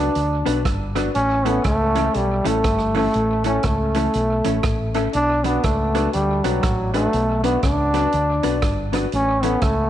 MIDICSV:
0, 0, Header, 1, 6, 480
1, 0, Start_track
1, 0, Key_signature, 2, "minor"
1, 0, Tempo, 497925
1, 1111, Time_signature, 4, 2, 24, 8
1, 9543, End_track
2, 0, Start_track
2, 0, Title_t, "Upright piano"
2, 0, Program_c, 0, 0
2, 432, Note_on_c, 0, 62, 89
2, 439, Note_on_c, 0, 66, 80
2, 444, Note_on_c, 0, 71, 96
2, 559, Note_off_c, 0, 62, 0
2, 563, Note_off_c, 0, 66, 0
2, 565, Note_off_c, 0, 71, 0
2, 915, Note_on_c, 0, 62, 90
2, 920, Note_on_c, 0, 66, 89
2, 928, Note_on_c, 0, 71, 99
2, 1041, Note_off_c, 0, 62, 0
2, 1043, Note_off_c, 0, 66, 0
2, 1047, Note_off_c, 0, 71, 0
2, 1394, Note_on_c, 0, 61, 90
2, 1402, Note_on_c, 0, 64, 81
2, 1408, Note_on_c, 0, 69, 103
2, 1521, Note_off_c, 0, 61, 0
2, 1524, Note_off_c, 0, 64, 0
2, 1527, Note_off_c, 0, 69, 0
2, 1873, Note_on_c, 0, 61, 82
2, 1880, Note_on_c, 0, 64, 76
2, 1885, Note_on_c, 0, 69, 96
2, 2000, Note_off_c, 0, 61, 0
2, 2004, Note_off_c, 0, 64, 0
2, 2006, Note_off_c, 0, 69, 0
2, 2358, Note_on_c, 0, 61, 92
2, 2363, Note_on_c, 0, 64, 82
2, 2368, Note_on_c, 0, 69, 93
2, 2483, Note_off_c, 0, 61, 0
2, 2486, Note_off_c, 0, 64, 0
2, 2488, Note_off_c, 0, 69, 0
2, 2846, Note_on_c, 0, 61, 90
2, 2850, Note_on_c, 0, 64, 81
2, 2856, Note_on_c, 0, 69, 100
2, 2967, Note_off_c, 0, 61, 0
2, 2969, Note_off_c, 0, 64, 0
2, 2972, Note_off_c, 0, 69, 0
2, 3323, Note_on_c, 0, 61, 90
2, 3329, Note_on_c, 0, 64, 82
2, 3336, Note_on_c, 0, 69, 98
2, 3446, Note_off_c, 0, 61, 0
2, 3449, Note_off_c, 0, 64, 0
2, 3453, Note_off_c, 0, 69, 0
2, 3802, Note_on_c, 0, 61, 85
2, 3808, Note_on_c, 0, 64, 78
2, 3814, Note_on_c, 0, 69, 94
2, 3926, Note_off_c, 0, 61, 0
2, 3929, Note_off_c, 0, 64, 0
2, 3932, Note_off_c, 0, 69, 0
2, 4281, Note_on_c, 0, 61, 86
2, 4285, Note_on_c, 0, 64, 77
2, 4293, Note_on_c, 0, 69, 92
2, 4406, Note_off_c, 0, 61, 0
2, 4408, Note_off_c, 0, 64, 0
2, 4412, Note_off_c, 0, 69, 0
2, 4763, Note_on_c, 0, 61, 88
2, 4767, Note_on_c, 0, 64, 86
2, 4772, Note_on_c, 0, 69, 101
2, 4887, Note_off_c, 0, 61, 0
2, 4889, Note_off_c, 0, 64, 0
2, 4891, Note_off_c, 0, 69, 0
2, 5247, Note_on_c, 0, 62, 86
2, 5254, Note_on_c, 0, 66, 81
2, 5259, Note_on_c, 0, 71, 96
2, 5369, Note_off_c, 0, 62, 0
2, 5372, Note_off_c, 0, 66, 0
2, 5375, Note_off_c, 0, 71, 0
2, 5728, Note_on_c, 0, 62, 85
2, 5736, Note_on_c, 0, 66, 77
2, 5740, Note_on_c, 0, 71, 96
2, 5850, Note_off_c, 0, 62, 0
2, 5854, Note_off_c, 0, 66, 0
2, 5856, Note_off_c, 0, 71, 0
2, 6204, Note_on_c, 0, 62, 89
2, 6213, Note_on_c, 0, 66, 79
2, 6216, Note_on_c, 0, 71, 91
2, 6328, Note_off_c, 0, 62, 0
2, 6332, Note_off_c, 0, 66, 0
2, 6334, Note_off_c, 0, 71, 0
2, 6688, Note_on_c, 0, 62, 89
2, 6694, Note_on_c, 0, 66, 83
2, 6698, Note_on_c, 0, 71, 100
2, 6810, Note_off_c, 0, 62, 0
2, 6813, Note_off_c, 0, 66, 0
2, 6815, Note_off_c, 0, 71, 0
2, 7167, Note_on_c, 0, 62, 86
2, 7175, Note_on_c, 0, 66, 77
2, 7180, Note_on_c, 0, 71, 98
2, 7289, Note_off_c, 0, 62, 0
2, 7293, Note_off_c, 0, 66, 0
2, 7296, Note_off_c, 0, 71, 0
2, 7643, Note_on_c, 0, 62, 82
2, 7651, Note_on_c, 0, 66, 78
2, 7656, Note_on_c, 0, 71, 98
2, 7767, Note_off_c, 0, 62, 0
2, 7771, Note_off_c, 0, 66, 0
2, 7774, Note_off_c, 0, 71, 0
2, 8121, Note_on_c, 0, 62, 86
2, 8125, Note_on_c, 0, 66, 78
2, 8131, Note_on_c, 0, 71, 100
2, 8246, Note_off_c, 0, 62, 0
2, 8248, Note_off_c, 0, 66, 0
2, 8251, Note_off_c, 0, 71, 0
2, 8600, Note_on_c, 0, 62, 91
2, 8605, Note_on_c, 0, 66, 84
2, 8611, Note_on_c, 0, 71, 106
2, 8725, Note_off_c, 0, 62, 0
2, 8728, Note_off_c, 0, 66, 0
2, 8731, Note_off_c, 0, 71, 0
2, 9081, Note_on_c, 0, 61, 93
2, 9088, Note_on_c, 0, 64, 84
2, 9093, Note_on_c, 0, 69, 93
2, 9206, Note_off_c, 0, 61, 0
2, 9209, Note_off_c, 0, 64, 0
2, 9211, Note_off_c, 0, 69, 0
2, 9543, End_track
3, 0, Start_track
3, 0, Title_t, "Hollow-body jazz guitar"
3, 0, Program_c, 1, 26
3, 439, Note_on_c, 1, 54, 78
3, 443, Note_on_c, 1, 59, 79
3, 449, Note_on_c, 1, 62, 91
3, 558, Note_off_c, 1, 54, 0
3, 560, Note_off_c, 1, 59, 0
3, 563, Note_off_c, 1, 62, 0
3, 920, Note_on_c, 1, 54, 90
3, 928, Note_on_c, 1, 59, 96
3, 933, Note_on_c, 1, 62, 105
3, 1039, Note_off_c, 1, 54, 0
3, 1043, Note_off_c, 1, 59, 0
3, 1046, Note_off_c, 1, 62, 0
3, 1401, Note_on_c, 1, 52, 78
3, 1406, Note_on_c, 1, 57, 81
3, 1410, Note_on_c, 1, 61, 83
3, 1520, Note_off_c, 1, 52, 0
3, 1522, Note_off_c, 1, 57, 0
3, 1524, Note_off_c, 1, 61, 0
3, 1882, Note_on_c, 1, 52, 71
3, 1888, Note_on_c, 1, 57, 79
3, 1891, Note_on_c, 1, 61, 82
3, 2000, Note_off_c, 1, 52, 0
3, 2003, Note_off_c, 1, 57, 0
3, 2005, Note_off_c, 1, 61, 0
3, 2356, Note_on_c, 1, 52, 81
3, 2363, Note_on_c, 1, 57, 90
3, 2369, Note_on_c, 1, 61, 91
3, 2478, Note_off_c, 1, 52, 0
3, 2481, Note_off_c, 1, 57, 0
3, 2484, Note_off_c, 1, 61, 0
3, 2840, Note_on_c, 1, 52, 97
3, 2849, Note_on_c, 1, 57, 101
3, 2851, Note_on_c, 1, 61, 106
3, 2960, Note_off_c, 1, 52, 0
3, 2964, Note_off_c, 1, 57, 0
3, 2965, Note_off_c, 1, 61, 0
3, 3321, Note_on_c, 1, 52, 79
3, 3329, Note_on_c, 1, 57, 81
3, 3334, Note_on_c, 1, 61, 82
3, 3441, Note_off_c, 1, 52, 0
3, 3445, Note_off_c, 1, 57, 0
3, 3447, Note_off_c, 1, 61, 0
3, 3806, Note_on_c, 1, 52, 76
3, 3815, Note_on_c, 1, 57, 79
3, 3817, Note_on_c, 1, 61, 86
3, 3924, Note_off_c, 1, 52, 0
3, 3928, Note_off_c, 1, 57, 0
3, 3929, Note_off_c, 1, 61, 0
3, 4285, Note_on_c, 1, 52, 78
3, 4291, Note_on_c, 1, 57, 80
3, 4297, Note_on_c, 1, 61, 81
3, 4403, Note_off_c, 1, 52, 0
3, 4406, Note_off_c, 1, 57, 0
3, 4409, Note_off_c, 1, 61, 0
3, 4769, Note_on_c, 1, 52, 90
3, 4774, Note_on_c, 1, 57, 85
3, 4780, Note_on_c, 1, 61, 88
3, 4886, Note_off_c, 1, 52, 0
3, 4888, Note_off_c, 1, 57, 0
3, 4891, Note_off_c, 1, 61, 0
3, 5247, Note_on_c, 1, 54, 88
3, 5248, Note_on_c, 1, 59, 87
3, 5258, Note_on_c, 1, 62, 95
3, 5365, Note_off_c, 1, 54, 0
3, 5365, Note_off_c, 1, 59, 0
3, 5370, Note_off_c, 1, 62, 0
3, 5732, Note_on_c, 1, 54, 78
3, 5736, Note_on_c, 1, 59, 83
3, 5742, Note_on_c, 1, 62, 89
3, 5847, Note_off_c, 1, 54, 0
3, 5849, Note_off_c, 1, 59, 0
3, 5852, Note_off_c, 1, 62, 0
3, 6210, Note_on_c, 1, 54, 82
3, 6214, Note_on_c, 1, 59, 95
3, 6220, Note_on_c, 1, 62, 93
3, 6326, Note_off_c, 1, 54, 0
3, 6328, Note_off_c, 1, 59, 0
3, 6331, Note_off_c, 1, 62, 0
3, 6687, Note_on_c, 1, 54, 79
3, 6691, Note_on_c, 1, 59, 77
3, 6696, Note_on_c, 1, 62, 88
3, 6805, Note_off_c, 1, 54, 0
3, 6807, Note_off_c, 1, 59, 0
3, 6809, Note_off_c, 1, 62, 0
3, 7169, Note_on_c, 1, 54, 80
3, 7174, Note_on_c, 1, 59, 94
3, 7179, Note_on_c, 1, 62, 91
3, 7286, Note_off_c, 1, 54, 0
3, 7288, Note_off_c, 1, 59, 0
3, 7291, Note_off_c, 1, 62, 0
3, 7654, Note_on_c, 1, 54, 77
3, 7658, Note_on_c, 1, 59, 91
3, 7662, Note_on_c, 1, 62, 93
3, 7768, Note_off_c, 1, 54, 0
3, 7770, Note_off_c, 1, 59, 0
3, 7772, Note_off_c, 1, 62, 0
3, 8128, Note_on_c, 1, 54, 75
3, 8132, Note_on_c, 1, 59, 77
3, 8137, Note_on_c, 1, 62, 93
3, 8245, Note_off_c, 1, 54, 0
3, 8247, Note_off_c, 1, 59, 0
3, 8250, Note_off_c, 1, 62, 0
3, 8608, Note_on_c, 1, 54, 83
3, 8614, Note_on_c, 1, 59, 88
3, 8615, Note_on_c, 1, 62, 96
3, 8725, Note_off_c, 1, 54, 0
3, 8728, Note_off_c, 1, 59, 0
3, 8728, Note_off_c, 1, 62, 0
3, 9090, Note_on_c, 1, 52, 69
3, 9097, Note_on_c, 1, 57, 85
3, 9101, Note_on_c, 1, 61, 89
3, 9205, Note_off_c, 1, 52, 0
3, 9209, Note_off_c, 1, 57, 0
3, 9211, Note_off_c, 1, 61, 0
3, 9543, End_track
4, 0, Start_track
4, 0, Title_t, "Trombone"
4, 0, Program_c, 2, 57
4, 0, Note_on_c, 2, 62, 96
4, 881, Note_off_c, 2, 62, 0
4, 1112, Note_on_c, 2, 61, 111
4, 1412, Note_on_c, 2, 59, 96
4, 1427, Note_off_c, 2, 61, 0
4, 1595, Note_off_c, 2, 59, 0
4, 1604, Note_on_c, 2, 57, 102
4, 2087, Note_on_c, 2, 55, 92
4, 2101, Note_off_c, 2, 57, 0
4, 2385, Note_on_c, 2, 57, 101
4, 2399, Note_off_c, 2, 55, 0
4, 2856, Note_off_c, 2, 57, 0
4, 2862, Note_on_c, 2, 57, 101
4, 3302, Note_off_c, 2, 57, 0
4, 3345, Note_on_c, 2, 61, 92
4, 3527, Note_on_c, 2, 57, 90
4, 3542, Note_off_c, 2, 61, 0
4, 4776, Note_off_c, 2, 57, 0
4, 4958, Note_on_c, 2, 62, 115
4, 5246, Note_on_c, 2, 59, 98
4, 5261, Note_off_c, 2, 62, 0
4, 5442, Note_on_c, 2, 57, 95
4, 5456, Note_off_c, 2, 59, 0
4, 5909, Note_off_c, 2, 57, 0
4, 5915, Note_on_c, 2, 55, 96
4, 6210, Note_on_c, 2, 54, 90
4, 6224, Note_off_c, 2, 55, 0
4, 6681, Note_off_c, 2, 54, 0
4, 6687, Note_on_c, 2, 57, 100
4, 7135, Note_off_c, 2, 57, 0
4, 7174, Note_on_c, 2, 59, 90
4, 7345, Note_off_c, 2, 59, 0
4, 7357, Note_on_c, 2, 62, 97
4, 8571, Note_off_c, 2, 62, 0
4, 8801, Note_on_c, 2, 61, 114
4, 9098, Note_on_c, 2, 59, 100
4, 9112, Note_off_c, 2, 61, 0
4, 9281, Note_on_c, 2, 57, 96
4, 9296, Note_off_c, 2, 59, 0
4, 9543, Note_off_c, 2, 57, 0
4, 9543, End_track
5, 0, Start_track
5, 0, Title_t, "Fingered electric bass"
5, 0, Program_c, 3, 33
5, 152, Note_on_c, 3, 38, 83
5, 401, Note_off_c, 3, 38, 0
5, 449, Note_on_c, 3, 35, 77
5, 605, Note_off_c, 3, 35, 0
5, 631, Note_on_c, 3, 31, 82
5, 1039, Note_off_c, 3, 31, 0
5, 1114, Note_on_c, 3, 33, 101
5, 1521, Note_off_c, 3, 33, 0
5, 1591, Note_on_c, 3, 37, 89
5, 2000, Note_off_c, 3, 37, 0
5, 2074, Note_on_c, 3, 35, 92
5, 2323, Note_off_c, 3, 35, 0
5, 2366, Note_on_c, 3, 33, 86
5, 2525, Note_off_c, 3, 33, 0
5, 2552, Note_on_c, 3, 31, 88
5, 2961, Note_off_c, 3, 31, 0
5, 3039, Note_on_c, 3, 33, 102
5, 3445, Note_off_c, 3, 33, 0
5, 3515, Note_on_c, 3, 37, 78
5, 3923, Note_off_c, 3, 37, 0
5, 4002, Note_on_c, 3, 35, 91
5, 4249, Note_off_c, 3, 35, 0
5, 4296, Note_on_c, 3, 33, 77
5, 4451, Note_off_c, 3, 33, 0
5, 4475, Note_on_c, 3, 33, 88
5, 4883, Note_off_c, 3, 33, 0
5, 4961, Note_on_c, 3, 35, 100
5, 5367, Note_off_c, 3, 35, 0
5, 5441, Note_on_c, 3, 37, 84
5, 5847, Note_off_c, 3, 37, 0
5, 5925, Note_on_c, 3, 38, 83
5, 6171, Note_off_c, 3, 38, 0
5, 6218, Note_on_c, 3, 35, 74
5, 6372, Note_off_c, 3, 35, 0
5, 6399, Note_on_c, 3, 33, 84
5, 6806, Note_off_c, 3, 33, 0
5, 6881, Note_on_c, 3, 35, 106
5, 7287, Note_off_c, 3, 35, 0
5, 7358, Note_on_c, 3, 37, 85
5, 7765, Note_off_c, 3, 37, 0
5, 7843, Note_on_c, 3, 38, 89
5, 8090, Note_off_c, 3, 38, 0
5, 8137, Note_on_c, 3, 35, 76
5, 8292, Note_off_c, 3, 35, 0
5, 8317, Note_on_c, 3, 31, 82
5, 8724, Note_off_c, 3, 31, 0
5, 8803, Note_on_c, 3, 33, 99
5, 9207, Note_off_c, 3, 33, 0
5, 9275, Note_on_c, 3, 37, 92
5, 9543, Note_off_c, 3, 37, 0
5, 9543, End_track
6, 0, Start_track
6, 0, Title_t, "Drums"
6, 145, Note_on_c, 9, 42, 76
6, 242, Note_off_c, 9, 42, 0
6, 445, Note_on_c, 9, 42, 92
6, 541, Note_off_c, 9, 42, 0
6, 629, Note_on_c, 9, 36, 108
6, 630, Note_on_c, 9, 37, 109
6, 631, Note_on_c, 9, 42, 76
6, 725, Note_off_c, 9, 36, 0
6, 726, Note_off_c, 9, 37, 0
6, 728, Note_off_c, 9, 42, 0
6, 919, Note_on_c, 9, 37, 68
6, 923, Note_on_c, 9, 42, 84
6, 1016, Note_off_c, 9, 37, 0
6, 1020, Note_off_c, 9, 42, 0
6, 1106, Note_on_c, 9, 42, 81
6, 1203, Note_off_c, 9, 42, 0
6, 1403, Note_on_c, 9, 42, 83
6, 1500, Note_off_c, 9, 42, 0
6, 1582, Note_on_c, 9, 42, 67
6, 1588, Note_on_c, 9, 36, 98
6, 1589, Note_on_c, 9, 37, 96
6, 1678, Note_off_c, 9, 42, 0
6, 1684, Note_off_c, 9, 36, 0
6, 1685, Note_off_c, 9, 37, 0
6, 1882, Note_on_c, 9, 42, 78
6, 1979, Note_off_c, 9, 42, 0
6, 2065, Note_on_c, 9, 42, 81
6, 2162, Note_off_c, 9, 42, 0
6, 2363, Note_on_c, 9, 42, 99
6, 2460, Note_off_c, 9, 42, 0
6, 2547, Note_on_c, 9, 37, 122
6, 2549, Note_on_c, 9, 36, 106
6, 2549, Note_on_c, 9, 42, 76
6, 2643, Note_off_c, 9, 37, 0
6, 2645, Note_off_c, 9, 36, 0
6, 2645, Note_off_c, 9, 42, 0
6, 2685, Note_on_c, 9, 37, 56
6, 2781, Note_off_c, 9, 37, 0
6, 2839, Note_on_c, 9, 46, 52
6, 2936, Note_off_c, 9, 46, 0
6, 3025, Note_on_c, 9, 42, 78
6, 3122, Note_off_c, 9, 42, 0
6, 3317, Note_on_c, 9, 42, 82
6, 3413, Note_off_c, 9, 42, 0
6, 3497, Note_on_c, 9, 42, 67
6, 3505, Note_on_c, 9, 37, 87
6, 3510, Note_on_c, 9, 36, 94
6, 3594, Note_off_c, 9, 42, 0
6, 3601, Note_off_c, 9, 37, 0
6, 3607, Note_off_c, 9, 36, 0
6, 3802, Note_on_c, 9, 42, 80
6, 3899, Note_off_c, 9, 42, 0
6, 3986, Note_on_c, 9, 42, 75
6, 4083, Note_off_c, 9, 42, 0
6, 4283, Note_on_c, 9, 42, 91
6, 4380, Note_off_c, 9, 42, 0
6, 4465, Note_on_c, 9, 37, 110
6, 4467, Note_on_c, 9, 42, 85
6, 4472, Note_on_c, 9, 36, 104
6, 4562, Note_off_c, 9, 37, 0
6, 4563, Note_off_c, 9, 42, 0
6, 4568, Note_off_c, 9, 36, 0
6, 4765, Note_on_c, 9, 42, 83
6, 4861, Note_off_c, 9, 42, 0
6, 4947, Note_on_c, 9, 42, 81
6, 5043, Note_off_c, 9, 42, 0
6, 5246, Note_on_c, 9, 42, 83
6, 5342, Note_off_c, 9, 42, 0
6, 5431, Note_on_c, 9, 42, 68
6, 5438, Note_on_c, 9, 36, 99
6, 5439, Note_on_c, 9, 37, 94
6, 5528, Note_off_c, 9, 42, 0
6, 5534, Note_off_c, 9, 36, 0
6, 5535, Note_off_c, 9, 37, 0
6, 5733, Note_on_c, 9, 42, 84
6, 5829, Note_off_c, 9, 42, 0
6, 5911, Note_on_c, 9, 42, 77
6, 6008, Note_off_c, 9, 42, 0
6, 6209, Note_on_c, 9, 42, 89
6, 6305, Note_off_c, 9, 42, 0
6, 6392, Note_on_c, 9, 37, 117
6, 6393, Note_on_c, 9, 42, 80
6, 6396, Note_on_c, 9, 36, 109
6, 6488, Note_off_c, 9, 37, 0
6, 6490, Note_off_c, 9, 42, 0
6, 6492, Note_off_c, 9, 36, 0
6, 6691, Note_on_c, 9, 42, 87
6, 6787, Note_off_c, 9, 42, 0
6, 6874, Note_on_c, 9, 42, 82
6, 6970, Note_off_c, 9, 42, 0
6, 7170, Note_on_c, 9, 42, 86
6, 7266, Note_off_c, 9, 42, 0
6, 7351, Note_on_c, 9, 42, 66
6, 7356, Note_on_c, 9, 36, 97
6, 7359, Note_on_c, 9, 37, 93
6, 7447, Note_off_c, 9, 42, 0
6, 7453, Note_off_c, 9, 36, 0
6, 7455, Note_off_c, 9, 37, 0
6, 7651, Note_on_c, 9, 42, 81
6, 7748, Note_off_c, 9, 42, 0
6, 7831, Note_on_c, 9, 42, 73
6, 7928, Note_off_c, 9, 42, 0
6, 8128, Note_on_c, 9, 42, 98
6, 8224, Note_off_c, 9, 42, 0
6, 8312, Note_on_c, 9, 37, 117
6, 8313, Note_on_c, 9, 42, 80
6, 8314, Note_on_c, 9, 36, 108
6, 8408, Note_off_c, 9, 37, 0
6, 8410, Note_off_c, 9, 42, 0
6, 8411, Note_off_c, 9, 36, 0
6, 8608, Note_on_c, 9, 42, 84
6, 8705, Note_off_c, 9, 42, 0
6, 8793, Note_on_c, 9, 42, 78
6, 8889, Note_off_c, 9, 42, 0
6, 9088, Note_on_c, 9, 42, 90
6, 9184, Note_off_c, 9, 42, 0
6, 9268, Note_on_c, 9, 42, 67
6, 9273, Note_on_c, 9, 36, 98
6, 9276, Note_on_c, 9, 37, 94
6, 9365, Note_off_c, 9, 42, 0
6, 9369, Note_off_c, 9, 36, 0
6, 9372, Note_off_c, 9, 37, 0
6, 9543, End_track
0, 0, End_of_file